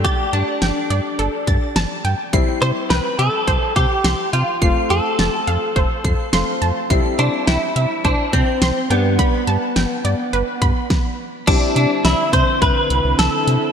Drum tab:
CC |--------|--------|--------|--------|
HH |xxxxxxxx|xxxxxxxx|xxxxxxxx|xxxxxxxx|
SD |--o---o-|--o---o-|--o---o-|--o---o-|
BD |o----o--|o---oo--|o---oo--|o---oo--|

CC |--------|x-------|
HH |xxxxxx--|xxxxxxxx|
SD |--o---o-|--o---o-|
BD |o----oo-|o--oo---|